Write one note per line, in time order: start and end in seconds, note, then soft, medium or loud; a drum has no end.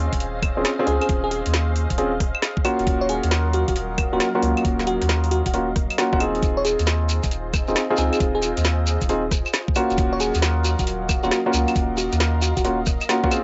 0.00 0.54 C4 medium
0.00 0.54 C#4 medium
0.00 0.54 F4 medium
0.00 0.54 G#4 loud
0.00 2.61 G#4 medium
0.00 2.61 C5 medium
0.00 6.39 D#5 medium
0.00 6.39 F5 medium
0.13 0.53 D#1 loud
0.13 kick medium
0.13 closed hi-hat medium
0.20 closed hi-hat medium
0.42 kick loud
0.42 cross-stick medium
0.42 open hi-hat loud
0.42 claves medium
0.57 0.64 D#1 loud
0.57 0.69 C4 medium
0.57 0.69 C#4 medium
0.57 0.69 F4 medium
0.57 0.69 G#4 medium
0.65 snare loud
0.65 closed hi-hat medium
0.79 0.85 C4 medium
0.79 0.85 C#4 medium
0.79 0.85 F4 medium
0.79 0.85 G#4 loud
0.87 0.99 C#2 loud
0.87 1.96 C4 medium
0.87 1.96 C#4 medium
0.87 1.96 F4 medium
0.87 0.96 G#4 medium
0.87 1.96 G#4 medium
0.87 open hi-hat medium
1.01 1.06 G#4 medium
1.01 closed hi-hat soft
1.01 claves medium
1.09 1.42 D#1 medium
1.09 kick loud
1.09 closed hi-hat medium
1.24 1.29 G#4 medium
1.31 1.41 G#4 medium
1.31 open hi-hat loud
1.46 1.87 D#2 medium
1.46 closed hi-hat medium
1.54 snare loud
1.54 closed hi-hat medium
1.76 open hi-hat loud
1.90 2.18 D#1 loud
1.90 kick medium
1.90 closed hi-hat medium
1.98 2.10 C4 medium
1.98 2.10 C#4 medium
1.98 2.10 F4 medium
1.98 2.10 G#4 medium
1.98 closed hi-hat medium
2.20 2.32 D#1 loud
2.20 kick medium
2.20 cross-stick medium
2.20 open hi-hat loud
2.35 claves medium
2.42 snare loud
2.42 closed hi-hat medium
2.57 kick loud
2.64 6.39 F#3 medium
2.64 4.09 A#3 loud
2.64 4.09 C#4 medium
2.64 4.09 F4 medium
2.64 4.09 F#4 loud
2.64 6.39 A#4 medium
2.64 open hi-hat loud
2.64 claves medium
2.79 2.86 D#1 medium
2.79 closed hi-hat soft
2.87 3.20 D#1 loud
2.87 kick loud
2.87 closed hi-hat medium
3.01 3.08 C#5 medium
3.09 3.26 G#4 medium
3.09 open hi-hat loud
3.23 3.64 D#2 loud
3.23 closed hi-hat medium
3.31 snare loud
3.31 closed hi-hat medium
3.53 3.63 F#4 medium
3.53 open hi-hat loud
3.68 4.09 D#1 loud
3.68 3.73 F#4 medium
3.68 kick medium
3.68 closed hi-hat medium
3.76 closed hi-hat medium
3.98 kick medium
3.98 cross-stick medium
3.98 open hi-hat loud
3.98 claves medium
4.13 4.19 D#1 loud
4.13 4.25 A#3 medium
4.13 4.25 C#4 medium
4.13 4.25 F4 medium
4.13 4.25 F#4 medium
4.13 4.18 F#4 medium
4.20 4.30 F#4 medium
4.20 snare loud
4.20 closed hi-hat medium
4.35 4.41 A#3 medium
4.35 4.41 C#4 medium
4.35 4.41 F4 medium
4.35 4.41 F#4 loud
4.43 4.55 C#2 loud
4.43 5.52 A#3 medium
4.43 5.52 C#4 medium
4.43 5.52 F4 medium
4.43 5.52 F#4 medium
4.43 open hi-hat loud
4.57 closed hi-hat soft
4.57 claves medium
4.65 4.98 D#1 loud
4.65 kick loud
4.65 closed hi-hat medium
4.79 snare medium
4.87 5.04 F#4 loud
4.87 open hi-hat loud
5.02 5.42 D#2 medium
5.02 cross-stick soft
5.02 closed hi-hat medium
5.09 snare loud
5.09 closed hi-hat medium
5.24 open hi-hat medium
5.31 5.41 F#4 medium
5.31 open hi-hat loud
5.46 5.74 D#1 loud
5.46 5.51 F#4 medium
5.46 kick medium
5.46 closed hi-hat medium
5.54 5.66 A#3 medium
5.54 5.66 C#4 medium
5.54 5.66 F4 medium
5.54 5.66 F#4 medium
5.54 closed hi-hat medium
5.76 5.88 D#1 loud
5.76 kick loud
5.76 cross-stick medium
5.76 open hi-hat loud
5.90 closed hi-hat soft
5.90 claves medium
5.98 6.09 A#3 medium
5.98 6.09 C#4 medium
5.98 6.09 F4 medium
5.98 6.09 F#4 medium
5.98 snare loud
5.98 closed hi-hat medium
6.13 6.41 D#1 loud
6.13 6.19 A#3 medium
6.13 6.19 C#4 medium
6.13 6.19 F4 medium
6.13 6.19 F#4 loud
6.13 kick loud
6.20 7.65 C4 medium
6.20 7.65 D#4 medium
6.20 7.65 F4 medium
6.20 7.65 G#4 loud
6.20 open hi-hat loud
6.20 claves medium
6.35 closed hi-hat soft
6.42 6.76 D#1 loud
6.42 9.95 F4 medium
6.42 9.94 G#4 medium
6.42 9.94 C5 medium
6.42 9.94 D#5 medium
6.42 kick loud
6.42 closed hi-hat medium
6.42 shekere soft
6.57 6.63 C#5 medium
6.65 6.81 G#4 medium
6.65 open hi-hat loud
6.65 shekere medium
6.79 7.20 D#2 medium
6.79 closed hi-hat medium
6.79 shekere soft
6.86 snare loud
6.86 closed hi-hat medium
6.86 shekere soft
7.09 open hi-hat loud
7.09 shekere medium
7.23 7.64 D#1 loud
7.23 kick medium
7.23 closed hi-hat medium
7.23 shekere soft
7.31 closed hi-hat medium
7.31 shekere soft
7.54 kick loud
7.54 cross-stick medium
7.54 open hi-hat loud
7.54 claves medium
7.54 shekere medium
7.68 7.75 D#1 medium
7.68 7.81 C4 medium
7.68 7.81 D#4 medium
7.68 7.81 F4 medium
7.68 7.81 G#4 medium
7.68 shekere soft
7.75 snare loud
7.75 closed hi-hat medium
7.75 shekere soft
7.90 7.96 C4 medium
7.90 7.96 D#4 medium
7.90 7.96 F4 medium
7.90 7.96 G#4 loud
7.97 8.10 C#2 loud
7.97 9.07 C4 medium
7.97 9.07 D#4 medium
7.97 9.07 F4 medium
7.97 8.07 G#4 medium
7.97 9.07 G#4 medium
7.97 open hi-hat loud
7.97 shekere medium
8.12 8.17 G#4 medium
8.12 closed hi-hat soft
8.12 claves medium
8.12 shekere soft
8.20 8.53 D#1 loud
8.20 kick loud
8.20 closed hi-hat medium
8.20 shekere soft
8.35 8.40 G#4 medium
8.42 8.52 G#4 medium
8.42 open hi-hat loud
8.42 shekere loud
8.57 8.98 D#2 medium
8.57 closed hi-hat medium
8.57 shekere soft
8.64 snare loud
8.64 closed hi-hat medium
8.64 shekere soft
8.87 open hi-hat loud
8.87 shekere medium
9.01 9.29 D#1 loud
9.01 kick medium
9.01 closed hi-hat medium
9.01 shekere soft
9.09 9.21 C4 medium
9.09 9.21 D#4 medium
9.09 9.21 F4 medium
9.09 9.21 G#4 medium
9.09 closed hi-hat medium
9.09 shekere soft
9.31 9.44 D#1 loud
9.31 kick loud
9.31 cross-stick medium
9.31 open hi-hat loud
9.31 shekere medium
9.46 claves medium
9.46 shekere medium
9.53 snare loud
9.53 closed hi-hat medium
9.53 shekere soft
9.68 kick loud
9.75 11.20 A#3 loud
9.75 11.20 C#4 medium
9.75 11.20 F4 medium
9.75 11.20 F#4 loud
9.75 open hi-hat loud
9.75 claves medium
9.75 shekere loud
9.90 9.97 D#1 medium
9.90 closed hi-hat soft
9.90 shekere soft
9.97 10.31 D#1 loud
9.97 13.28 F#3 medium
9.97 13.28 A#4 medium
9.97 13.44 D#5 medium
9.97 13.44 F5 medium
9.97 kick loud
9.97 closed hi-hat medium
9.97 shekere soft
10.13 10.19 C#5 medium
10.20 10.37 G#4 medium
10.20 open hi-hat loud
10.20 shekere medium
10.35 10.75 D#2 loud
10.35 closed hi-hat medium
10.35 shekere medium
10.42 snare loud
10.42 closed hi-hat medium
10.42 shekere soft
10.65 10.74 F#4 medium
10.65 open hi-hat loud
10.65 shekere loud
10.79 11.20 D#1 loud
10.79 10.84 F#4 medium
10.79 kick medium
10.79 closed hi-hat medium
10.79 shekere medium
10.87 closed hi-hat medium
10.87 shekere soft
11.09 kick loud
11.09 cross-stick medium
11.09 open hi-hat loud
11.09 claves medium
11.09 shekere loud
11.23 11.30 D#1 loud
11.23 11.36 A#3 medium
11.23 11.36 C#4 medium
11.23 11.36 F4 medium
11.23 11.29 F#4 medium
11.23 11.36 F#4 medium
11.23 shekere medium
11.31 11.41 F#4 medium
11.31 snare loud
11.31 closed hi-hat medium
11.31 shekere soft
11.46 11.52 A#3 medium
11.46 11.52 C#4 medium
11.46 11.52 F4 medium
11.46 11.52 F#4 loud
11.53 11.66 C#2 loud
11.53 12.63 A#3 medium
11.53 12.63 C#4 medium
11.53 12.63 F4 medium
11.53 12.63 F#4 medium
11.53 open hi-hat loud
11.53 shekere loud
11.68 closed hi-hat soft
11.68 claves medium
11.68 shekere medium
11.75 12.09 D#1 loud
11.75 kick loud
11.75 closed hi-hat medium
11.75 shekere soft
11.97 12.14 F#4 loud
11.97 open hi-hat loud
11.97 shekere medium
12.12 12.53 D#2 loud
12.12 cross-stick soft
12.12 closed hi-hat medium
12.12 shekere soft
12.20 snare loud
12.20 closed hi-hat medium
12.20 shekere soft
12.42 12.52 F#4 medium
12.42 open hi-hat loud
12.42 shekere medium
12.57 12.85 D#1 loud
12.57 12.62 F#4 medium
12.57 kick medium
12.57 closed hi-hat medium
12.57 shekere medium
12.65 12.77 A#3 medium
12.65 12.77 C#4 medium
12.65 12.77 F4 medium
12.65 12.77 F#4 medium
12.65 closed hi-hat medium
12.65 shekere soft
12.86 12.99 D#1 loud
12.86 kick loud
12.86 cross-stick medium
12.86 open hi-hat loud
12.86 shekere loud
13.01 closed hi-hat soft
13.01 claves medium
13.01 shekere medium
13.09 13.20 A#3 medium
13.09 13.20 C#4 medium
13.09 13.20 F4 medium
13.09 13.20 F#4 medium
13.09 snare loud
13.09 closed hi-hat medium
13.09 shekere soft
13.24 13.30 A#3 loud
13.24 13.30 C#4 medium
13.24 13.30 F4 medium
13.24 13.30 F#4 loud
13.24 kick loud
13.31 13.44 C4 medium
13.31 13.44 C#4 medium
13.31 13.44 F4 medium
13.31 13.44 G#4 medium
13.31 13.44 C5 medium
13.31 open hi-hat loud
13.31 claves medium
13.31 shekere medium